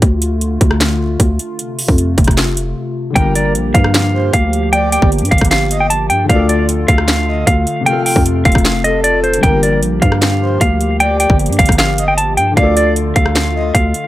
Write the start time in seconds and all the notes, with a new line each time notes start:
0.02 D2 D3 A3 F4, kick, closed hi-hat
0.22 closed hi-hat
0.41 closed hi-hat
0.61 D2, kick, closed hi-hat
0.71 cross-stick
0.81 snare, clap, closed hi-hat
1.20 D2, kick, closed hi-hat
1.39 closed hi-hat
1.59 C3 A3, closed hi-hat
1.79 open hi-hat
1.88 F2, kick
1.98 closed hi-hat
2.18 F1, kick, closed hi-hat
2.24 F1, kick, cross-stick, closed hi-hat
2.31 closed hi-hat
2.37 snare, clap, closed hi-hat
2.57 closed hi-hat
3.10 D3 G3
3.15 G1 F3 A#3 F4 G4 A#4 G5, kick, closed hi-hat
3.22 G4
3.35 D5, closed hi-hat
3.55 A#1, closed hi-hat
3.74 G2 F5, kick, closed hi-hat
3.84 cross-stick
3.94 snare, clap, closed hi-hat
4.14 C5
4.33 D2 F5, kick, closed hi-hat
4.53 closed hi-hat
4.73 D5 G5, closed hi-hat
4.92 G5, closed hi-hat
5.02 G1, kick
5.12 closed hi-hat
5.18 G2, closed hi-hat
5.25 closed hi-hat
5.31 G1 F5, kick, closed hi-hat
5.38 G1, kick, cross-stick, closed hi-hat
5.45 closed hi-hat
5.51 F5, snare, clap, closed hi-hat
5.71 D#5, closed hi-hat
5.80 G5
5.90 A5, closed hi-hat
6.10 G2 G5, closed hi-hat
6.24 D3 F3
6.29 D2 D3 A3 F4 D5 F5, kick, closed hi-hat
6.35 A4
6.49 D5, closed hi-hat
6.69 closed hi-hat
6.88 D2 F5, kick, closed hi-hat
6.98 cross-stick
7.08 snare, clap, closed hi-hat
7.28 D#5
7.47 D2 F5, kick, closed hi-hat
7.67 closed hi-hat
7.81 C3 F3
7.86 C3 A3 F4 F5 G5, closed hi-hat
7.92 A4
8.06 G5, open hi-hat
8.16 F2, kick
8.26 closed hi-hat
8.45 F1 F5, kick, closed hi-hat
8.52 F1, kick, cross-stick, closed hi-hat
8.58 closed hi-hat
8.65 snare, clap, closed hi-hat
8.84 A4 D#5, closed hi-hat
9.04 D5, closed hi-hat
9.24 C5, closed hi-hat
9.34 closed hi-hat
9.38 D3 G3
9.43 G1 F3 A#3 F4 G4 A#4 G5, kick, closed hi-hat
9.49 G4
9.63 D5, closed hi-hat
9.82 A#1, closed hi-hat
10.02 G2 F5, kick, closed hi-hat
10.12 cross-stick
10.22 snare, clap, closed hi-hat
10.41 C5
10.61 D2 F5, kick, closed hi-hat
10.81 closed hi-hat
11.00 D5 G5, closed hi-hat
11.20 G5, closed hi-hat
11.30 G1, kick
11.39 closed hi-hat
11.46 G2, closed hi-hat
11.53 closed hi-hat
11.59 G1 F5, kick, closed hi-hat
11.66 G1, kick, cross-stick, closed hi-hat
11.72 closed hi-hat
11.78 F5, snare, clap, closed hi-hat
11.98 D#5, closed hi-hat
12.08 G5
12.17 A5, closed hi-hat
12.37 G2 G5, closed hi-hat
12.52 D3 F3
12.57 D2 D3 A3 F4 D5 F5, kick, closed hi-hat
12.63 A4
12.77 D5, closed hi-hat
12.96 closed hi-hat
13.16 D2 F5, kick, closed hi-hat
13.26 cross-stick
13.35 snare, clap, closed hi-hat
13.55 D#5
13.75 D2 F5, kick, closed hi-hat
13.94 closed hi-hat